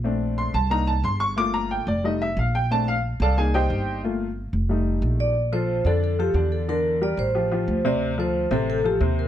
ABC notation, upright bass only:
X:1
M:4/4
L:1/8
Q:1/4=181
K:Bb
V:1 name="Upright bass" clef=bass
B,,,3 C,,3 G,,,2- | G,,,3 F,,,3 B,,,2- | B,,,3 C,,3 G,,,2- | G,,,3 F,,,3 B,,,2- |
B,,,3 F,,3 =E,,2- | =E,,3 A,,,3 D,,2- | D,,3 A,,,3 E,,2 |]